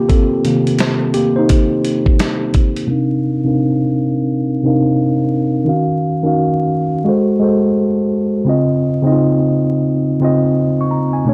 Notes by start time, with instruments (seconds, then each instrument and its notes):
Already playing: tine electric piano C3 D#3 A#3 D4 F4 G4 A#4
0.09 tine electric piano C4 A4, kick, closed hi-hat
0.45 tine electric piano C3 D#3 A#3, closed hi-hat
0.67 closed hi-hat
0.79 snare, closed hi-hat
1.14 tine electric piano A#3 G4, closed hi-hat
1.36 tine electric piano D#4 C5
1.49 kick, closed hi-hat
1.85 closed hi-hat
2.06 kick
2.19 snare, closed hi-hat
2.54 kick, closed hi-hat
2.76 closed hi-hat
2.87 tine electric piano C3 C4 D4 D#4 A#4
2.91 tine electric piano F5
3.44 tine electric piano C3 C4 D4 D#4 A#4
3.48 tine electric piano F5
4.63 tine electric piano C3 C4 D4 D#4 A#4
4.68 tine electric piano F5
5.65 tine electric piano D#3 C#4 F#4
5.69 tine electric piano F5
6.23 tine electric piano D#3 C#4 F#4
6.27 tine electric piano F5
7.04 tine electric piano G#3 F#4 A4
7.09 tine electric piano C5
7.40 tine electric piano G#3 F#4 A4
7.44 tine electric piano C5
8.45 tine electric piano C#3 C4 F4
8.49 tine electric piano D#5
9.02 tine electric piano C#3 C4 D#4
9.07 tine electric piano D#5
9.12 tine electric piano F4
10.20 tine electric piano C#3 C4 F4
10.25 tine electric piano D#5
10.81 tine electric piano C#6
10.91 tine electric piano A#5
11.13 tine electric piano G#5
11.25 tine electric piano B2 A3 D4
11.29 tine electric piano C#5